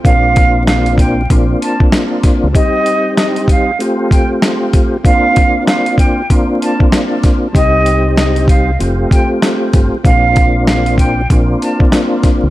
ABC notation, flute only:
X:1
M:4/4
L:1/16
Q:"Swing 16ths" 1/4=96
K:Bb
V:1 name="Flute"
f4 f2 g2 z2 a z4 z | e4 e2 f2 z2 g z4 z | f4 f2 g2 z2 a z4 z | e4 e2 f2 z2 g z4 z |
f4 f2 g2 z2 a z4 z |]